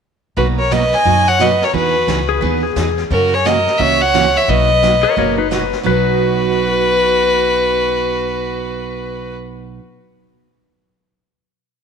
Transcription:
0.37 0.92 B1 medium
0.37 0.58 B2 medium
0.37 0.59 F#3 medium
0.37 0.59 A#3 medium
0.37 0.59 D#4 medium
0.37 0.47 F#4 medium
0.37 0.59 F#4 medium
0.37 0.47 B4 medium
0.37 brush sweep soft
0.37 kick soft
0.58 0.74 A#4 medium
0.58 0.74 C#5 medium
0.71 0.83 B2 medium
0.71 0.83 F#3 medium
0.71 0.83 A#3 medium
0.71 0.83 D#4 medium
0.71 0.83 F#4 medium
0.71 0.96 B4 medium
0.71 0.96 D#5 loud
0.71 snare medium
0.71 hi-hat pedal medium
0.93 1.30 D#5 medium
0.93 1.30 G#5 loud
0.93 snare soft
1.05 1.60 F#2 medium
1.05 1.27 B2 medium
1.05 1.27 F#3 medium
1.05 1.27 A#3 medium
1.05 1.27 D#4 medium
1.05 1.28 F#4 medium
1.05 brush sweep soft
1.05 kick soft
1.28 1.43 C#5 medium
1.28 1.43 F#5 loud
1.39 1.51 B2 medium
1.39 1.51 F#3 medium
1.39 1.51 A#3 medium
1.39 1.51 D#4 medium
1.39 1.52 F#4 medium
1.39 1.63 B4 medium
1.39 1.65 D#5 medium
1.39 snare medium
1.39 hi-hat pedal medium
1.61 1.73 A#4 medium
1.61 1.75 C#5 medium
1.61 snare soft
1.74 2.01 E2 medium
1.74 1.95 E3 medium
1.74 1.95 B3 medium
1.74 1.96 D#4 medium
1.74 2.38 F#4 medium
1.74 1.96 G#4 medium
1.74 2.39 B4 medium
1.74 brush sweep soft
1.74 kick soft
2.07 2.37 C#2 medium
2.07 2.19 E3 medium
2.07 2.19 B3 medium
2.07 2.20 D#4 medium
2.07 2.20 G#4 medium
2.07 snare medium
2.07 hi-hat pedal medium
2.29 2.41 G#4 medium
2.41 2.71 D#2 medium
2.41 2.63 E3 medium
2.41 2.64 B3 medium
2.41 2.64 D#4 medium
2.41 2.64 G#4 medium
2.41 2.63 B4 medium
2.41 brush sweep soft
2.41 kick soft
2.63 3.03 G#4 medium
2.76 3.05 E2 medium
2.76 2.88 E3 medium
2.76 2.88 B3 medium
2.76 2.88 D#4 medium
2.76 2.88 G#4 medium
2.76 snare medium
2.76 hi-hat pedal medium
2.98 snare soft
3.10 3.66 F#2 medium
3.10 3.32 C#3 medium
3.10 3.32 E3 medium
3.10 3.33 A#3 medium
3.10 3.33 C#4 medium
3.10 3.33 F#4 medium
3.10 3.36 F#4 medium
3.10 3.35 A#4 loud
3.10 brush sweep soft
3.10 kick soft
3.34 3.50 G#4 medium
3.34 3.47 C#5 medium
3.45 3.56 C#3 medium
3.45 3.56 E3 medium
3.45 3.57 A#3 medium
3.45 3.57 C#4 medium
3.45 3.57 F#4 medium
3.45 3.83 A#4 medium
3.45 3.80 D#5 medium
3.45 snare medium
3.45 hi-hat pedal medium
3.67 snare soft
3.78 4.34 C#2 medium
3.78 4.01 C#3 medium
3.78 4.01 E3 medium
3.78 4.01 A#3 medium
3.78 4.01 C#4 medium
3.78 4.01 F#4 medium
3.78 4.02 C#5 medium
3.78 4.03 E5 loud
3.78 brush sweep soft
3.78 kick soft
4.01 4.35 C#5 medium
4.01 4.38 F#5 loud
4.14 4.25 C#3 medium
4.14 4.25 E3 medium
4.14 4.26 A#3 medium
4.14 4.25 C#4 medium
4.14 4.26 F#4 medium
4.14 snare medium
4.14 hi-hat pedal medium
4.35 4.50 C#5 medium
4.35 4.51 E5 medium
4.35 snare soft
4.48 5.03 B1 loud
4.48 4.70 B2 medium
4.48 4.70 F#3 medium
4.48 4.70 A#3 medium
4.48 4.70 D#4 medium
4.48 4.70 F#4 medium
4.48 5.51 B4 medium
4.48 5.51 D#5 loud
4.48 brush sweep soft
4.48 kick soft
4.82 4.94 B2 medium
4.82 4.94 F#3 medium
4.82 4.94 A#3 medium
4.82 4.94 D#4 medium
4.82 4.94 F#4 medium
4.82 snare medium
4.82 hi-hat pedal medium
5.03 5.16 A#4 medium
5.03 5.16 C#5 medium
5.16 5.72 F#1 medium
5.16 5.38 B2 medium
5.16 5.38 F#3 medium
5.16 5.38 A#3 medium
5.16 5.38 D#4 medium
5.16 5.38 F#4 medium
5.16 5.37 A#4 medium
5.16 5.38 C#5 medium
5.16 brush sweep soft
5.16 kick soft
5.38 5.51 D#4 medium
5.38 5.50 B4 medium
5.51 5.62 B2 medium
5.51 5.62 F#3 medium
5.51 5.62 A#3 medium
5.51 5.63 D#4 medium
5.51 5.63 F#4 medium
5.51 5.78 B4 medium
5.51 snare medium
5.51 hi-hat pedal soft
5.73 snare soft
5.83 9.77 B1 medium
5.83 9.78 B2 medium
5.83 9.79 F#3 medium
5.83 9.81 D#4 medium
5.83 9.35 F#4 medium
5.83 9.81 F#4 medium
5.83 9.36 B4 loud

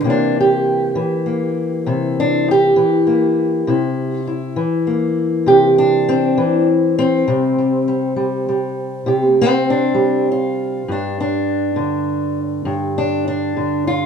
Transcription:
0.04 0.96 C3 medium
0.04 0.95 E3 soft
0.04 1.26 A#3 medium
0.10 0.39 D4 medium
0.40 2.19 G4 medium
0.95 2.75 E3 medium
1.26 3.06 A#3 soft
1.86 2.77 C3 medium
1.86 3.63 E4 medium
2.20 2.48 D4 medium
2.51 4.29 G4 loud
2.76 3.63 E3 medium
3.07 3.70 A#3 soft
3.67 4.57 C3 medium
3.67 4.26 E4 medium
4.27 7.23 E4 soft
4.56 6.36 E3 medium
4.87 6.07 A#3 soft
5.46 6.37 C3 medium
5.46 5.77 G4 medium
5.78 6.68 D4 loud
6.09 6.97 C4 medium
6.37 7.23 E3 medium
6.99 9.38 C4 loud
7.28 9.05 C3 medium
7.28 7.58 G3 medium
7.58 7.87 G3 soft
7.88 8.16 G3 soft
8.16 8.48 G3 medium
8.49 9.93 G3 soft
9.06 10.83 C3 medium
9.06 9.67 G4 soft
9.41 10.29 C4 loud
9.70 10.29 D4 medium
9.94 10.82 G3 medium
10.32 10.89 F4 medium
10.88 12.64 G2 medium
10.88 11.19 D4 medium
11.20 12.39 D4 medium
11.76 13.55 D3 medium
12.65 14.06 G2 medium
12.98 13.26 D4 medium
13.28 13.87 D4 medium
13.56 14.06 D3 medium
13.87 14.06 F4 medium

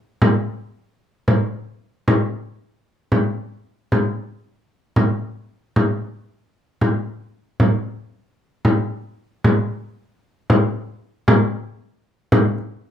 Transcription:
0.22 frame drum medium
1.28 frame drum medium
2.08 frame drum medium
3.12 frame drum medium
3.92 frame drum medium
4.96 frame drum medium
5.76 frame drum medium
6.81 frame drum soft
7.60 frame drum medium
8.65 frame drum medium
9.44 frame drum medium
10.50 frame drum medium
11.28 frame drum medium
12.32 frame drum medium
12.58 frame drum soft

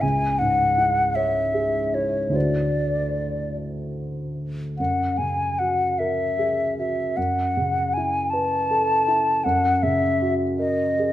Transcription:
0.01 2.30 C#2 soft
0.01 0.40 G#5 medium
0.39 1.01 G#2 soft
0.39 1.17 F#5 medium
0.78 1.39 E4 soft
1.15 1.79 C#5 soft
1.15 1.96 E5 medium
1.54 2.18 G#4 soft
1.94 2.30 E4 soft
1.94 2.37 C#5 soft
2.29 4.72 D2 soft
2.29 4.73 D4 soft
2.29 4.73 E4 soft
2.29 4.74 F#4 soft
2.29 4.74 C5 soft
2.36 3.57 D5 soft
4.78 7.13 F#2 soft
4.78 5.19 F#5 soft
5.18 5.83 C#3 soft
5.18 5.60 G#5 soft
5.59 6.23 F#4 soft
5.59 6.00 F#5 medium
5.99 6.62 A#4 soft
5.99 6.77 E5 soft
6.39 7.01 G#4 soft
6.78 7.18 F#4 soft
6.78 7.18 E5 soft
7.17 9.40 F#2 soft
7.17 7.95 F#5 medium
7.57 8.17 C#3 soft
7.94 8.56 E4 soft
7.94 8.32 G#5 medium
8.30 8.92 B4 soft
8.30 9.46 A5 medium
8.71 9.30 A4 soft
9.08 9.45 E4 soft
9.44 11.13 F#2 medium
9.44 9.84 F#5 medium
9.83 10.44 C#3 soft
9.83 10.35 E5 medium
10.22 10.83 F#4 soft
10.58 11.13 A#4 soft
10.58 11.13 D#5 medium
10.99 11.13 G#4 soft

